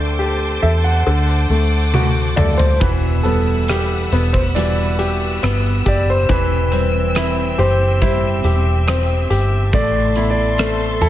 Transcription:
Already playing: fingered electric bass D2, upright piano D3 A3, string section C5 G5 A5 D6, grand piano D5
0.19 upright piano G4
0.62 fingered electric bass E2, upright piano A4, grand piano E5
0.84 grand piano F#5
1.06 fingered electric bass D2, upright piano D3, string section F#5 D6
1.49 fingered electric bass D2, upright piano A3
1.94 upright piano F#4, high tom
2.36 fingered electric bass D2, upright piano A4, grand piano D5, mid tom
2.57 grand piano C5, floor tom
2.80 fingered electric bass E1, nylon-string guitar E2 F#4, upright piano E3, grand piano B4, string section B4 E5 F#5 E6, kick, closed hi-hat
3.23 nylon-string guitar G3, upright piano B3, grand piano A4, closed hi-hat
3.68 nylon-string guitar B3, upright piano G4, cross-stick, closed hi-hat
4.12 fingered electric bass E1, upright piano B3, closed hi-hat
4.33 grand piano C5, kick
4.55 upright piano E3, nylon-string guitar G3 B3 F#4, grand piano D5, closed hi-hat
4.99 nylon-string guitar F#4, upright piano G4, closed hi-hat
5.43 fingered electric bass G1, upright piano B3, cross-stick, closed hi-hat
5.86 fingered electric bass F#1, upright piano G4, grand piano D5, kick, closed hi-hat
6.10 grand piano C5
6.29 fingered electric bass E1, nylon-string guitar E3 G4, upright piano E3, string section C4 E5 G5, grand piano B4, kick, closed hi-hat
6.71 nylon-string guitar G3, upright piano C4, closed hi-hat
7.15 nylon-string guitar C4, upright piano E4, cross-stick, closed hi-hat
7.58 fingered electric bass F#1, upright piano G4, grand piano C5, closed hi-hat
8.01 nylon-string guitar G3 C4 G4, upright piano E4, grand piano C5, kick, closed hi-hat
8.44 fingered electric bass E1, nylon-string guitar G4, upright piano G4, closed hi-hat
8.87 upright piano C4, cross-stick, closed hi-hat
9.30 fingered electric bass G1, upright piano G4, closed hi-hat
9.73 fingered electric bass A1, nylon-string guitar A2 E4, upright piano A3, string section A4 A5 C6, grand piano D5, kick, closed hi-hat
10.15 nylon-string guitar B3, upright piano E4, closed hi-hat
10.31 grand piano D5
10.58 upright piano A3, nylon-string guitar C4, cross-stick, closed hi-hat
11.01 fingered electric bass E2, upright piano E4, grand piano A4, closed hi-hat

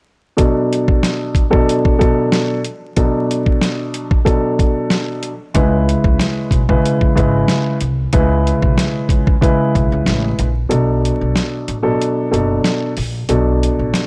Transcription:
0.37 grand piano B2 F#3 D4 A4, kick, closed hi-hat
0.73 closed hi-hat
0.88 kick
1.03 snare, closed hi-hat
1.35 kick, closed hi-hat
1.50 grand piano B2 F#3 D4 A4, kick
1.69 closed hi-hat
1.85 kick
1.99 grand piano B2 F#3 D4 A4, kick, closed hi-hat
2.32 snare, closed hi-hat
2.65 closed hi-hat
2.96 grand piano B2 F#3 D4 A4, kick, closed hi-hat
3.31 closed hi-hat
3.46 kick
3.61 snare, closed hi-hat
3.94 closed hi-hat
4.11 kick
4.25 grand piano B2 F#3 D4 A4, kick, closed hi-hat
4.59 kick, closed hi-hat
4.90 snare, closed hi-hat
5.23 closed hi-hat
5.54 upright bass C#2, grand piano C#3 G#3 E4 B4, kick, closed hi-hat
5.89 closed hi-hat
6.04 upright bass C#2, kick
6.20 snare, closed hi-hat
6.51 upright bass B1, kick, closed hi-hat
6.69 grand piano C#3 G#3 E4 B4, kick
6.85 closed hi-hat
7.01 kick
7.15 upright bass G#1, grand piano C#3 G#3 E4 B4, kick, closed hi-hat
7.48 snare, closed hi-hat
7.81 upright bass C2, closed hi-hat
8.13 upright bass C#2, grand piano C#3 G#3 E4 B4, kick, closed hi-hat
8.47 closed hi-hat
8.62 upright bass B1, kick
8.78 snare, closed hi-hat
9.09 upright bass C#2, kick, closed hi-hat
9.27 kick
9.41 grand piano C#3 G#3 E4 B4, kick, closed hi-hat
9.75 upright bass B1, kick, closed hi-hat
9.92 upright bass C#2
10.06 upright bass A1, snare, closed hi-hat
10.39 upright bass A#1, closed hi-hat
10.69 upright bass B1, grand piano B2 F#3 D4 A4, closed hi-hat
11.05 closed hi-hat
11.21 upright bass B1
11.36 snare, closed hi-hat
11.68 upright bass A1, closed hi-hat
11.83 grand piano B2 F#3 D4 A4
12.02 closed hi-hat
12.31 upright bass F#1, grand piano B2 F#3 D4 A4, closed hi-hat
12.64 snare, closed hi-hat
12.97 upright bass A#1, open hi-hat
13.29 upright bass B1, grand piano B2 F#3 D4 A4, closed hi-hat
13.63 closed hi-hat
13.79 upright bass A1
13.94 snare, closed hi-hat

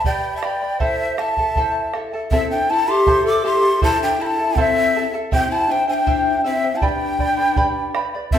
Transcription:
0.04 charango G4 B4 D5 G5 B5, pan flute D5, quena G5, bombo low
0.34 pan flute E5, quena A5
0.41 charango B4 D5 G5 B5, pan flute D5, quena G5, bombo rim
0.62 charango B4 D5 B5
0.80 charango E4 A4 C5 E5 A5, pan flute C5, quena E5, bombo low
1.17 charango E4 A4 E5 A5, pan flute E5, quena A5, bombo rim
1.37 charango E4 A4 A5, bombo low
1.56 charango E4 A4 C5 E5 A5, bombo low
1.94 charango E4 A4 E5 A5, bombo rim
2.13 charango E4 A4 A5
2.31 pan flute C4, charango E4 A4 C5 E5 A5, quena E5, bombo low
2.51 pan flute D4, quena G5
2.70 pan flute E4, charango E4 A4 E5 A5, quena A5
2.88 charango E4 A4 A5, pan flute G4, quena C6
3.07 charango E4 A4 C5 E5 A5, bombo low
3.25 pan flute A4, quena D6
3.44 charango E4 A4 E5 A5, pan flute G4, quena C6
3.63 charango E4 A4 A5
3.82 charango E4 A4 C5 E5 A5, pan flute E4, quena A5, bombo low
4.01 pan flute D4, quena G5
4.20 pan flute E4, charango E4 A4 E5 A5, quena B5
4.26 quena A5
4.39 charango E4 A4 A5
4.56 pan flute C4, charango E4 A4 C5 E5 A5, bombo low
4.60 quena E5
4.95 charango E4 A4 E5 A5
5.14 charango E4 A4 A5
5.32 pan flute C4, charango E4 G4 C5 E5 G5, quena G5, bombo low
5.50 pan flute E4, quena A5
5.69 pan flute D4, charango E4 C5 E5 G5, quena G5
5.88 pan flute D4, charango E4 C5 G5, quena G#5
5.94 quena G5
6.07 charango E4 G4 C5 E5 G5, bombo low
6.44 pan flute C4, charango E4 C5 E5 G5, quena E5
6.63 charango E4 C5 G5
6.76 pan flute E4, quena A5
6.81 pan flute D4, charango G4 B4 D5 G5 B5, quena G#5, bombo low
6.89 quena G5
7.19 charango B4 D5 G5 B5, bombo low
7.38 charango B4 D5 B5
7.56 charango G4 B4 D5 G5 B5, bombo low
7.95 charango B4 D5 G5 B5, bombo rim
8.14 charango B4 D5 B5
8.31 pan flute C4, charango E4 A4 C5 E5 A5, quena E5, bombo low

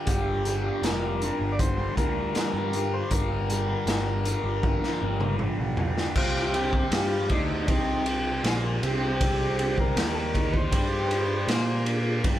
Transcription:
Already playing: tonewheel organ G3 D4 F4 A#4
0.05 picked electric bass G1, distorted electric guitar G2 D3, transistor combo organ G4, kick, closed hi-hat
0.10 distorted electric guitar G3
0.44 distorted electric guitar G2 D3 G3, closed hi-hat
0.64 distorted electric guitar D3 G3
0.82 picked electric bass F1, distorted electric guitar G2 D3 G3, transistor combo organ A#4, snare, closed hi-hat
1.21 distorted electric guitar G2 D3 G3, closed hi-hat
1.39 picked electric bass G1, distorted electric guitar D3 G3
1.52 transistor combo organ D5
1.59 transistor combo organ C5, kick, closed hi-hat
1.78 distorted electric guitar D3 G3
1.96 picked electric bass D2, distorted electric guitar G2 D3 G3, transistor combo organ A#4, kick, closed hi-hat
2.15 distorted electric guitar D3 G3
2.34 distorted electric guitar G2 D3 G3, snare, closed hi-hat
2.53 picked electric bass G2, distorted electric guitar D3 G3
2.71 distorted electric guitar G2 D3 G3, closed hi-hat
2.94 transistor combo organ C5
3.10 picked electric bass G1, distorted electric guitar G2 D3 G3, transistor combo organ A#4, kick, closed hi-hat
3.48 distorted electric guitar G2 D3 G3, closed hi-hat
3.67 distorted electric guitar D3 G3
3.86 picked electric bass G1, distorted electric guitar G2 D3 G3, snare, closed hi-hat
4.24 distorted electric guitar G2 D3 G3, closed hi-hat
4.44 picked electric bass G1, distorted electric guitar D3 G3
4.63 kick, high tom
4.82 distorted electric guitar D3 G3, snare
5.01 picked electric bass G1, distorted electric guitar G2 D3 G3
5.20 distorted electric guitar D3 G3, mid tom
5.39 distorted electric guitar G2 D3 G3, mid tom
5.58 picked electric bass B1, distorted electric guitar D3 G3
5.77 distorted electric guitar G2 D3 G3, floor tom
5.98 snare
6.15 picked electric bass C2, distorted electric guitar C3 C4, tonewheel organ G3 C4 G4 C5, transistor combo organ F4, kick, crash
6.36 snare
6.54 transistor combo organ G4, ride
6.73 kick
6.91 picked electric bass G2, distorted electric guitar G3 G4, transistor combo organ F4, snare, ride
7.29 picked electric bass D2, distorted electric guitar D3 D4, transistor combo organ D#4, kick, ride
7.64 transistor combo organ D4
7.68 picked electric bass C2, distorted electric guitar C3 C4, transistor combo organ D#4, kick, ride
8.06 ride
8.44 picked electric bass A#1, distorted electric guitar A#2 A#3, snare, ride
8.82 picked electric bass C2, distorted electric guitar C3 C4, transistor combo organ G4, ride
9.21 tonewheel organ D5, kick, ride
9.59 transistor combo organ G4, ride
9.78 transistor combo organ A#4, kick
9.96 picked electric bass D#2, distorted electric guitar D#3 D#4, snare, ride
10.14 transistor combo organ A4 A#4
10.35 kick, ride
10.52 transistor combo organ B4, kick
10.57 transistor combo organ C5
10.72 picked electric bass G2, distorted electric guitar G3 G4, kick, ride
11.07 transistor combo organ B4, ride
11.12 transistor combo organ C5
11.48 picked electric bass A#2, distorted electric guitar A#3 A#4, snare, ride
11.86 ride
12.24 picked electric bass G1, distorted electric guitar G2 G3, tonewheel organ F3 D4 G4 A#5, kick, ride

